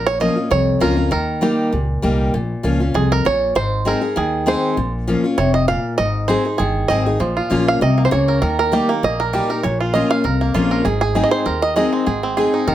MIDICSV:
0, 0, Header, 1, 4, 480
1, 0, Start_track
1, 0, Tempo, 304105
1, 1763, Time_signature, 4, 2, 24, 8
1, 20123, End_track
2, 0, Start_track
2, 0, Title_t, "Five-string banjo"
2, 0, Program_c, 0, 105
2, 103, Note_on_c, 0, 73, 105
2, 324, Note_off_c, 0, 73, 0
2, 330, Note_on_c, 0, 75, 103
2, 805, Note_off_c, 0, 75, 0
2, 811, Note_on_c, 0, 73, 98
2, 1284, Note_on_c, 0, 70, 91
2, 1302, Note_off_c, 0, 73, 0
2, 1745, Note_off_c, 0, 70, 0
2, 1764, Note_on_c, 0, 70, 88
2, 2251, Note_on_c, 0, 67, 62
2, 2259, Note_off_c, 0, 70, 0
2, 2938, Note_off_c, 0, 67, 0
2, 4658, Note_on_c, 0, 68, 90
2, 4921, Note_off_c, 0, 68, 0
2, 4923, Note_on_c, 0, 70, 94
2, 5140, Note_off_c, 0, 70, 0
2, 5150, Note_on_c, 0, 73, 104
2, 5586, Note_off_c, 0, 73, 0
2, 5619, Note_on_c, 0, 72, 98
2, 6108, Note_off_c, 0, 72, 0
2, 6115, Note_on_c, 0, 70, 85
2, 6582, Note_on_c, 0, 68, 84
2, 6595, Note_off_c, 0, 70, 0
2, 7069, Note_off_c, 0, 68, 0
2, 7073, Note_on_c, 0, 72, 84
2, 7751, Note_off_c, 0, 72, 0
2, 8488, Note_on_c, 0, 73, 94
2, 8737, Note_off_c, 0, 73, 0
2, 8743, Note_on_c, 0, 75, 91
2, 8959, Note_off_c, 0, 75, 0
2, 8966, Note_on_c, 0, 77, 100
2, 9428, Note_off_c, 0, 77, 0
2, 9434, Note_on_c, 0, 75, 99
2, 9911, Note_on_c, 0, 72, 86
2, 9936, Note_off_c, 0, 75, 0
2, 10387, Note_on_c, 0, 68, 87
2, 10415, Note_off_c, 0, 72, 0
2, 10865, Note_on_c, 0, 75, 94
2, 10893, Note_off_c, 0, 68, 0
2, 11367, Note_on_c, 0, 53, 67
2, 11566, Note_off_c, 0, 75, 0
2, 11627, Note_on_c, 0, 65, 61
2, 11848, Note_on_c, 0, 58, 50
2, 12057, Note_off_c, 0, 53, 0
2, 12122, Note_off_c, 0, 65, 0
2, 12129, Note_on_c, 0, 77, 102
2, 12338, Note_off_c, 0, 77, 0
2, 12345, Note_on_c, 0, 75, 98
2, 12584, Note_off_c, 0, 58, 0
2, 12591, Note_on_c, 0, 58, 63
2, 12698, Note_off_c, 0, 75, 0
2, 12704, Note_on_c, 0, 72, 80
2, 12808, Note_off_c, 0, 72, 0
2, 12818, Note_on_c, 0, 73, 91
2, 13074, Note_on_c, 0, 70, 61
2, 13280, Note_off_c, 0, 73, 0
2, 13286, Note_off_c, 0, 70, 0
2, 13286, Note_on_c, 0, 70, 84
2, 13541, Note_off_c, 0, 70, 0
2, 13560, Note_on_c, 0, 70, 89
2, 13781, Note_off_c, 0, 70, 0
2, 13783, Note_on_c, 0, 67, 89
2, 14020, Note_off_c, 0, 67, 0
2, 14025, Note_off_c, 0, 58, 0
2, 14031, Note_on_c, 0, 58, 77
2, 14273, Note_on_c, 0, 75, 90
2, 14518, Note_on_c, 0, 70, 91
2, 14531, Note_off_c, 0, 75, 0
2, 14687, Note_off_c, 0, 58, 0
2, 14733, Note_on_c, 0, 67, 62
2, 14975, Note_off_c, 0, 70, 0
2, 14994, Note_on_c, 0, 70, 61
2, 15200, Note_off_c, 0, 67, 0
2, 15206, Note_on_c, 0, 73, 80
2, 15212, Note_off_c, 0, 70, 0
2, 15470, Note_off_c, 0, 73, 0
2, 15476, Note_on_c, 0, 65, 65
2, 15683, Note_on_c, 0, 75, 90
2, 15929, Note_off_c, 0, 75, 0
2, 15950, Note_on_c, 0, 77, 92
2, 16129, Note_off_c, 0, 65, 0
2, 16172, Note_on_c, 0, 70, 66
2, 16432, Note_on_c, 0, 58, 66
2, 16601, Note_off_c, 0, 77, 0
2, 16646, Note_on_c, 0, 65, 64
2, 16860, Note_off_c, 0, 70, 0
2, 16906, Note_on_c, 0, 70, 65
2, 17087, Note_off_c, 0, 58, 0
2, 17116, Note_off_c, 0, 65, 0
2, 17122, Note_on_c, 0, 68, 69
2, 17128, Note_off_c, 0, 70, 0
2, 17380, Note_off_c, 0, 68, 0
2, 17380, Note_on_c, 0, 68, 89
2, 17585, Note_off_c, 0, 68, 0
2, 17604, Note_on_c, 0, 68, 55
2, 17734, Note_on_c, 0, 75, 77
2, 17851, Note_off_c, 0, 75, 0
2, 17857, Note_on_c, 0, 72, 96
2, 18085, Note_on_c, 0, 70, 69
2, 18340, Note_off_c, 0, 72, 0
2, 18347, Note_on_c, 0, 75, 104
2, 18549, Note_off_c, 0, 75, 0
2, 18568, Note_on_c, 0, 75, 85
2, 18775, Note_off_c, 0, 70, 0
2, 18824, Note_on_c, 0, 60, 56
2, 19041, Note_off_c, 0, 68, 0
2, 19047, Note_on_c, 0, 68, 66
2, 19256, Note_off_c, 0, 75, 0
2, 19302, Note_off_c, 0, 60, 0
2, 19308, Note_on_c, 0, 60, 66
2, 19519, Note_off_c, 0, 68, 0
2, 19525, Note_on_c, 0, 68, 56
2, 19789, Note_on_c, 0, 63, 66
2, 20005, Note_on_c, 0, 70, 67
2, 20053, Note_off_c, 0, 60, 0
2, 20123, Note_off_c, 0, 63, 0
2, 20123, Note_off_c, 0, 68, 0
2, 20123, Note_off_c, 0, 70, 0
2, 20123, End_track
3, 0, Start_track
3, 0, Title_t, "Steel-string acoustic guitar"
3, 0, Program_c, 1, 25
3, 0, Note_on_c, 1, 46, 87
3, 315, Note_on_c, 1, 53, 84
3, 322, Note_on_c, 1, 58, 82
3, 331, Note_on_c, 1, 61, 84
3, 336, Note_on_c, 1, 65, 91
3, 549, Note_off_c, 1, 65, 0
3, 568, Note_on_c, 1, 65, 57
3, 570, Note_off_c, 1, 53, 0
3, 573, Note_off_c, 1, 58, 0
3, 578, Note_off_c, 1, 61, 0
3, 594, Note_on_c, 1, 61, 46
3, 758, Note_off_c, 1, 46, 0
3, 786, Note_off_c, 1, 65, 0
3, 798, Note_on_c, 1, 41, 96
3, 799, Note_off_c, 1, 61, 0
3, 1268, Note_on_c, 1, 53, 95
3, 1279, Note_on_c, 1, 58, 94
3, 1285, Note_on_c, 1, 61, 109
3, 1295, Note_on_c, 1, 65, 102
3, 1506, Note_off_c, 1, 65, 0
3, 1525, Note_on_c, 1, 65, 65
3, 1527, Note_off_c, 1, 53, 0
3, 1531, Note_off_c, 1, 61, 0
3, 1532, Note_off_c, 1, 58, 0
3, 1550, Note_on_c, 1, 61, 50
3, 1717, Note_off_c, 1, 41, 0
3, 1745, Note_off_c, 1, 65, 0
3, 1749, Note_on_c, 1, 51, 89
3, 1757, Note_off_c, 1, 61, 0
3, 2227, Note_on_c, 1, 55, 87
3, 2237, Note_on_c, 1, 58, 90
3, 2245, Note_on_c, 1, 63, 88
3, 2253, Note_on_c, 1, 67, 95
3, 2673, Note_off_c, 1, 51, 0
3, 2694, Note_off_c, 1, 55, 0
3, 2699, Note_off_c, 1, 58, 0
3, 2703, Note_off_c, 1, 63, 0
3, 2707, Note_off_c, 1, 67, 0
3, 2724, Note_on_c, 1, 46, 86
3, 3194, Note_on_c, 1, 55, 96
3, 3206, Note_on_c, 1, 58, 97
3, 3212, Note_on_c, 1, 63, 94
3, 3222, Note_on_c, 1, 67, 90
3, 3641, Note_off_c, 1, 46, 0
3, 3658, Note_off_c, 1, 55, 0
3, 3664, Note_off_c, 1, 58, 0
3, 3667, Note_off_c, 1, 63, 0
3, 3672, Note_off_c, 1, 67, 0
3, 3691, Note_on_c, 1, 46, 87
3, 4156, Note_on_c, 1, 53, 92
3, 4163, Note_on_c, 1, 58, 77
3, 4174, Note_on_c, 1, 61, 94
3, 4177, Note_on_c, 1, 65, 106
3, 4403, Note_off_c, 1, 65, 0
3, 4412, Note_off_c, 1, 53, 0
3, 4415, Note_off_c, 1, 58, 0
3, 4421, Note_off_c, 1, 61, 0
3, 4422, Note_on_c, 1, 65, 68
3, 4442, Note_on_c, 1, 61, 48
3, 4605, Note_off_c, 1, 46, 0
3, 4635, Note_off_c, 1, 65, 0
3, 4645, Note_off_c, 1, 61, 0
3, 4645, Note_on_c, 1, 41, 86
3, 5104, Note_off_c, 1, 41, 0
3, 5130, Note_on_c, 1, 46, 88
3, 5587, Note_off_c, 1, 46, 0
3, 5607, Note_on_c, 1, 44, 90
3, 6078, Note_on_c, 1, 56, 85
3, 6087, Note_on_c, 1, 60, 82
3, 6096, Note_on_c, 1, 63, 90
3, 6100, Note_on_c, 1, 68, 85
3, 6316, Note_off_c, 1, 68, 0
3, 6334, Note_off_c, 1, 56, 0
3, 6334, Note_on_c, 1, 68, 67
3, 6336, Note_off_c, 1, 63, 0
3, 6338, Note_off_c, 1, 60, 0
3, 6355, Note_on_c, 1, 63, 50
3, 6524, Note_off_c, 1, 44, 0
3, 6552, Note_off_c, 1, 68, 0
3, 6562, Note_off_c, 1, 63, 0
3, 6563, Note_on_c, 1, 51, 90
3, 7039, Note_on_c, 1, 56, 107
3, 7049, Note_on_c, 1, 60, 99
3, 7057, Note_on_c, 1, 63, 103
3, 7062, Note_on_c, 1, 68, 108
3, 7482, Note_off_c, 1, 51, 0
3, 7502, Note_off_c, 1, 56, 0
3, 7507, Note_off_c, 1, 60, 0
3, 7511, Note_off_c, 1, 63, 0
3, 7513, Note_off_c, 1, 68, 0
3, 7531, Note_on_c, 1, 46, 87
3, 8010, Note_on_c, 1, 53, 78
3, 8018, Note_on_c, 1, 58, 83
3, 8024, Note_on_c, 1, 61, 85
3, 8033, Note_on_c, 1, 65, 101
3, 8248, Note_off_c, 1, 65, 0
3, 8260, Note_off_c, 1, 53, 0
3, 8264, Note_off_c, 1, 58, 0
3, 8267, Note_off_c, 1, 61, 0
3, 8267, Note_on_c, 1, 65, 55
3, 8295, Note_on_c, 1, 61, 57
3, 8446, Note_off_c, 1, 46, 0
3, 8479, Note_off_c, 1, 65, 0
3, 8492, Note_off_c, 1, 61, 0
3, 8492, Note_on_c, 1, 48, 93
3, 8949, Note_off_c, 1, 48, 0
3, 8971, Note_on_c, 1, 46, 96
3, 9428, Note_off_c, 1, 46, 0
3, 9441, Note_on_c, 1, 44, 92
3, 9915, Note_on_c, 1, 56, 92
3, 9925, Note_on_c, 1, 60, 94
3, 9933, Note_on_c, 1, 63, 96
3, 9942, Note_on_c, 1, 68, 93
3, 10159, Note_off_c, 1, 68, 0
3, 10173, Note_off_c, 1, 56, 0
3, 10178, Note_off_c, 1, 60, 0
3, 10178, Note_on_c, 1, 68, 61
3, 10182, Note_off_c, 1, 63, 0
3, 10199, Note_on_c, 1, 63, 45
3, 10362, Note_off_c, 1, 44, 0
3, 10394, Note_off_c, 1, 68, 0
3, 10405, Note_off_c, 1, 63, 0
3, 10408, Note_on_c, 1, 51, 96
3, 10880, Note_on_c, 1, 56, 88
3, 10887, Note_on_c, 1, 60, 100
3, 10898, Note_on_c, 1, 63, 93
3, 10906, Note_on_c, 1, 68, 106
3, 11128, Note_off_c, 1, 68, 0
3, 11136, Note_off_c, 1, 56, 0
3, 11139, Note_off_c, 1, 60, 0
3, 11144, Note_off_c, 1, 63, 0
3, 11147, Note_on_c, 1, 68, 65
3, 11167, Note_on_c, 1, 63, 49
3, 11325, Note_off_c, 1, 51, 0
3, 11359, Note_off_c, 1, 68, 0
3, 11362, Note_on_c, 1, 46, 89
3, 11369, Note_off_c, 1, 63, 0
3, 11835, Note_on_c, 1, 53, 78
3, 11844, Note_on_c, 1, 58, 90
3, 11853, Note_on_c, 1, 61, 93
3, 11859, Note_on_c, 1, 65, 106
3, 12282, Note_off_c, 1, 46, 0
3, 12300, Note_off_c, 1, 53, 0
3, 12305, Note_off_c, 1, 58, 0
3, 12309, Note_off_c, 1, 61, 0
3, 12313, Note_off_c, 1, 65, 0
3, 12330, Note_on_c, 1, 48, 95
3, 12788, Note_off_c, 1, 48, 0
3, 12804, Note_on_c, 1, 49, 104
3, 13265, Note_off_c, 1, 49, 0
3, 13289, Note_on_c, 1, 51, 90
3, 13759, Note_on_c, 1, 55, 85
3, 13770, Note_on_c, 1, 58, 93
3, 13779, Note_on_c, 1, 63, 94
3, 13783, Note_on_c, 1, 67, 92
3, 14013, Note_off_c, 1, 67, 0
3, 14015, Note_off_c, 1, 55, 0
3, 14021, Note_off_c, 1, 58, 0
3, 14025, Note_off_c, 1, 63, 0
3, 14032, Note_on_c, 1, 67, 62
3, 14057, Note_on_c, 1, 63, 50
3, 14206, Note_off_c, 1, 51, 0
3, 14242, Note_off_c, 1, 67, 0
3, 14255, Note_off_c, 1, 63, 0
3, 14255, Note_on_c, 1, 46, 96
3, 14729, Note_on_c, 1, 55, 94
3, 14734, Note_on_c, 1, 58, 106
3, 14743, Note_on_c, 1, 63, 91
3, 14749, Note_on_c, 1, 67, 98
3, 14967, Note_off_c, 1, 67, 0
3, 14980, Note_off_c, 1, 55, 0
3, 14983, Note_off_c, 1, 58, 0
3, 14986, Note_on_c, 1, 67, 67
3, 14987, Note_off_c, 1, 63, 0
3, 15007, Note_on_c, 1, 63, 55
3, 15169, Note_off_c, 1, 46, 0
3, 15199, Note_off_c, 1, 67, 0
3, 15209, Note_off_c, 1, 63, 0
3, 15218, Note_on_c, 1, 46, 93
3, 15687, Note_on_c, 1, 53, 78
3, 15698, Note_on_c, 1, 58, 86
3, 15706, Note_on_c, 1, 61, 104
3, 15712, Note_on_c, 1, 65, 103
3, 16131, Note_off_c, 1, 46, 0
3, 16147, Note_off_c, 1, 53, 0
3, 16152, Note_off_c, 1, 58, 0
3, 16157, Note_off_c, 1, 61, 0
3, 16160, Note_off_c, 1, 65, 0
3, 16163, Note_on_c, 1, 41, 93
3, 16642, Note_on_c, 1, 53, 110
3, 16652, Note_on_c, 1, 58, 94
3, 16659, Note_on_c, 1, 61, 104
3, 16665, Note_on_c, 1, 65, 101
3, 17083, Note_off_c, 1, 41, 0
3, 17104, Note_off_c, 1, 53, 0
3, 17109, Note_off_c, 1, 58, 0
3, 17113, Note_off_c, 1, 61, 0
3, 17116, Note_off_c, 1, 65, 0
3, 17131, Note_on_c, 1, 44, 93
3, 17597, Note_on_c, 1, 56, 80
3, 17608, Note_on_c, 1, 60, 90
3, 17615, Note_on_c, 1, 63, 98
3, 17623, Note_on_c, 1, 68, 101
3, 18046, Note_off_c, 1, 44, 0
3, 18061, Note_off_c, 1, 56, 0
3, 18067, Note_off_c, 1, 60, 0
3, 18070, Note_off_c, 1, 63, 0
3, 18074, Note_off_c, 1, 68, 0
3, 18082, Note_on_c, 1, 51, 92
3, 18558, Note_on_c, 1, 56, 95
3, 18568, Note_on_c, 1, 60, 96
3, 18577, Note_on_c, 1, 63, 102
3, 18584, Note_on_c, 1, 68, 95
3, 19001, Note_off_c, 1, 51, 0
3, 19021, Note_off_c, 1, 56, 0
3, 19026, Note_off_c, 1, 60, 0
3, 19030, Note_off_c, 1, 63, 0
3, 19034, Note_off_c, 1, 68, 0
3, 19042, Note_on_c, 1, 44, 86
3, 19523, Note_on_c, 1, 56, 87
3, 19528, Note_on_c, 1, 60, 87
3, 19537, Note_on_c, 1, 63, 89
3, 19543, Note_on_c, 1, 68, 94
3, 19959, Note_off_c, 1, 44, 0
3, 19982, Note_off_c, 1, 56, 0
3, 19985, Note_off_c, 1, 60, 0
3, 19989, Note_off_c, 1, 63, 0
3, 19992, Note_off_c, 1, 68, 0
3, 20007, Note_on_c, 1, 51, 101
3, 20123, Note_off_c, 1, 51, 0
3, 20123, End_track
4, 0, Start_track
4, 0, Title_t, "Upright bass"
4, 0, Program_c, 2, 32
4, 0, Note_on_c, 2, 34, 79
4, 422, Note_off_c, 2, 34, 0
4, 801, Note_on_c, 2, 36, 94
4, 1210, Note_off_c, 2, 36, 0
4, 1283, Note_on_c, 2, 37, 81
4, 1691, Note_off_c, 2, 37, 0
4, 1764, Note_on_c, 2, 39, 77
4, 2346, Note_off_c, 2, 39, 0
4, 2729, Note_on_c, 2, 37, 87
4, 3135, Note_off_c, 2, 37, 0
4, 3213, Note_on_c, 2, 36, 83
4, 3618, Note_off_c, 2, 36, 0
4, 3688, Note_on_c, 2, 34, 85
4, 3978, Note_off_c, 2, 34, 0
4, 4167, Note_on_c, 2, 37, 91
4, 4575, Note_off_c, 2, 37, 0
4, 4648, Note_on_c, 2, 36, 87
4, 5055, Note_off_c, 2, 36, 0
4, 5131, Note_on_c, 2, 34, 73
4, 5537, Note_off_c, 2, 34, 0
4, 5609, Note_on_c, 2, 32, 83
4, 6190, Note_off_c, 2, 32, 0
4, 6570, Note_on_c, 2, 39, 84
4, 7151, Note_off_c, 2, 39, 0
4, 7528, Note_on_c, 2, 34, 86
4, 8109, Note_off_c, 2, 34, 0
4, 8485, Note_on_c, 2, 29, 85
4, 9068, Note_off_c, 2, 29, 0
4, 9451, Note_on_c, 2, 32, 82
4, 10032, Note_off_c, 2, 32, 0
4, 10407, Note_on_c, 2, 31, 88
4, 10816, Note_off_c, 2, 31, 0
4, 10885, Note_on_c, 2, 32, 87
4, 11295, Note_off_c, 2, 32, 0
4, 11364, Note_on_c, 2, 34, 90
4, 11656, Note_off_c, 2, 34, 0
4, 11847, Note_on_c, 2, 34, 90
4, 12256, Note_off_c, 2, 34, 0
4, 12325, Note_on_c, 2, 36, 91
4, 12735, Note_off_c, 2, 36, 0
4, 12810, Note_on_c, 2, 37, 86
4, 13218, Note_off_c, 2, 37, 0
4, 13287, Note_on_c, 2, 39, 93
4, 13869, Note_off_c, 2, 39, 0
4, 14245, Note_on_c, 2, 34, 84
4, 14828, Note_off_c, 2, 34, 0
4, 15210, Note_on_c, 2, 34, 86
4, 15792, Note_off_c, 2, 34, 0
4, 16167, Note_on_c, 2, 36, 89
4, 16576, Note_off_c, 2, 36, 0
4, 16647, Note_on_c, 2, 34, 92
4, 17056, Note_off_c, 2, 34, 0
4, 17125, Note_on_c, 2, 32, 92
4, 17707, Note_off_c, 2, 32, 0
4, 18083, Note_on_c, 2, 39, 88
4, 18666, Note_off_c, 2, 39, 0
4, 19049, Note_on_c, 2, 32, 83
4, 19629, Note_off_c, 2, 32, 0
4, 20001, Note_on_c, 2, 39, 86
4, 20123, Note_off_c, 2, 39, 0
4, 20123, End_track
0, 0, End_of_file